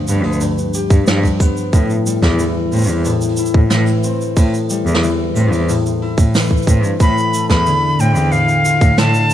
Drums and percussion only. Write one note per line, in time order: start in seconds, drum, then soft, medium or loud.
0.08 open hi-hat medium
0.08 shaker medium
0.23 open hi-hat medium
0.33 shaker soft
0.41 open hi-hat medium
0.41 shaker medium
0.58 shaker medium
0.74 open hi-hat soft
0.74 shaker medium
0.90 kick loud
0.90 open hi-hat medium
0.90 shaker soft
1.07 snare medium
1.07 open hi-hat medium
1.07 shaker medium
1.24 kick medium
1.24 open hi-hat medium
1.24 shaker soft
1.40 kick loud
1.40 shaker medium
1.57 shaker soft
1.73 kick loud
1.73 open hi-hat medium
1.73 shaker medium
1.90 shaker soft
2.06 open hi-hat soft
2.06 shaker medium
2.22 kick medium
2.22 snare medium
2.22 open hi-hat medium
2.22 shaker soft
2.39 open hi-hat medium
2.39 shaker medium
2.72 open hi-hat soft
2.72 shaker soft
2.75 shaker soft
2.78 shaker medium
2.81 shaker medium
2.84 shaker medium
2.86 shaker medium
2.88 open hi-hat medium
2.88 shaker soft
3.04 open hi-hat medium
3.04 shaker medium
3.21 shaker soft
3.29 open hi-hat soft
3.37 shaker medium
3.46 shaker soft
3.54 kick loud
3.70 snare medium
3.70 open hi-hat medium
3.70 shaker medium
3.86 open hi-hat medium
3.86 shaker soft
4.03 shaker medium
4.21 shaker soft
4.37 kick loud
4.37 open hi-hat medium
4.37 shaker medium
4.54 shaker soft
4.70 open hi-hat soft
4.70 shaker medium
4.87 shaker soft
4.94 snare medium
5.03 open hi-hat medium
5.03 shaker medium
5.36 open hi-hat soft
5.36 shaker medium
5.53 open hi-hat medium
5.53 shaker soft
5.69 open hi-hat medium
5.69 shaker medium
5.86 shaker soft
6.02 open hi-hat soft
6.18 kick loud
6.18 open hi-hat medium
6.18 shaker medium
6.35 snare medium
6.35 open hi-hat medium
6.35 shaker medium
6.37 shaker soft
6.43 open hi-hat medium
6.43 shaker soft
6.48 kick medium
6.48 shaker soft
6.51 shaker soft
6.57 shaker soft
6.62 shaker soft
6.67 kick loud
6.67 shaker medium
6.84 shaker soft
7.00 kick loud
7.00 open hi-hat medium
7.00 shaker medium
7.18 shaker soft
7.34 open hi-hat soft
7.34 shaker medium
7.50 kick medium
7.50 snare medium
7.50 open hi-hat medium
7.50 shaker soft
7.66 open hi-hat medium
7.66 shaker medium
7.99 open hi-hat soft
7.99 shaker medium
8.16 open hi-hat soft
8.16 shaker soft
8.31 open hi-hat medium
8.31 shaker medium
8.48 shaker soft
8.65 open hi-hat soft
8.65 shaker medium
8.81 kick loud
8.81 open hi-hat medium
8.81 shaker soft
8.98 snare medium
8.98 open hi-hat medium
8.98 shaker medium
9.14 open hi-hat medium
9.14 shaker soft
9.30 shaker medium